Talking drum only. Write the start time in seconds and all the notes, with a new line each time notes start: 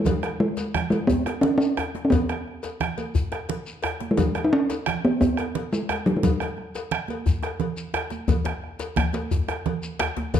0.07 F#3
0.40 G#3
0.90 G#3
1.07 B3
1.41 C#4
1.58 C#4
2.05 C#4
2.10 B3
4.11 G#3
4.17 F#3
4.44 D#4
4.53 C#4
5.05 B3
5.21 B3
5.73 G#3
6.06 F#3
6.17 G#3
6.24 F#3